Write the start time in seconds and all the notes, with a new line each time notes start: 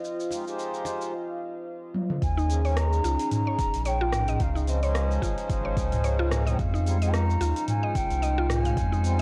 Already playing: F4 C5 D#5 F5
0.04 F5, shaker
0.20 shaker
0.30 G#3 D#4 F4 G4 F5, cajon slap, shaker
0.44 G#3 D#4 F4 G4 C5, shaker
0.59 shaker
0.74 shaker
0.85 cajon slap, shaker
1.02 shaker
1.95 high tom
2.10 mid tom
2.22 D#2 C#4 D#4 G#4 C5 G#5, kick, open hi-hat, shaker
2.37 D#4, shaker
2.48 F3 A#3 C#4 D#4 G#4, open hi-hat, shaker
2.64 F3 A#3 C#4 D#4 G#4 C#5, open hi-hat, shaker
2.77 A#5, cross-stick, open hi-hat, shaker
2.93 shaker
3.04 C#2 F4, open hi-hat, shaker
3.19 open hi-hat, shaker
3.31 A#5, mid tom, open hi-hat, shaker
3.47 C#5
3.58 D#1, kick, open hi-hat, shaker
3.74 A#1, open hi-hat, shaker
3.85 C#5 G5, open hi-hat, shaker
4.01 F4
4.13 cross-stick, mid tom, open hi-hat, shaker
4.28 D#5, mid tom, open hi-hat, shaker
4.40 C#2 G#3 D#5 F5, kick, open hi-hat, shaker
4.56 D#4, shaker
4.66 F3 C4 C#4 D#4 C5 D#5, open hi-hat, shaker
4.81 F3 C#4 D#4 C5 C#5, open hi-hat, shaker
4.85 G#4
4.95 cross-stick, open hi-hat, shaker
5.11 shaker
5.22 G#1 F4, kick, open hi-hat, shaker
5.38 open hi-hat, shaker
5.49 G#1, kick, open hi-hat, shaker
5.65 C#5
5.77 C#2, kick, open hi-hat, shaker
5.92 mid tom, open hi-hat, shaker
6.04 C#5, open hi-hat, shaker
6.19 F4
6.31 cross-stick, mid tom, open hi-hat, shaker
6.45 F3 C4 C#4 D#4 G#4 D#5, mid tom, open hi-hat, shaker
6.53 G5
6.58 F2 D#4 F4 F5, kick, open hi-hat, shaker
6.74 D#4, shaker
6.84 G3 C4 D#4 F4 G#4, open hi-hat, shaker
7.00 G3 C4 D#4 F4 G#4 D#5, open hi-hat, shaker
7.13 A#5, cross-stick, open hi-hat, shaker
7.30 shaker
7.40 D#2 F4, open hi-hat, shaker
7.56 open hi-hat, shaker
7.68 G#5, mid tom, open hi-hat, shaker
7.83 D#5
7.95 F1 G5, kick, open hi-hat, shaker
8.10 C2, open hi-hat, shaker
8.22 D#5, open hi-hat, shaker
8.38 F4
8.50 G#5, cross-stick, mid tom, open hi-hat, shaker
8.65 F5, mid tom, open hi-hat, shaker
8.77 F2, kick, open hi-hat, shaker
8.92 D#4, shaker
9.04 G3 C4 D#4 F4 C5, open hi-hat, shaker
9.18 G#3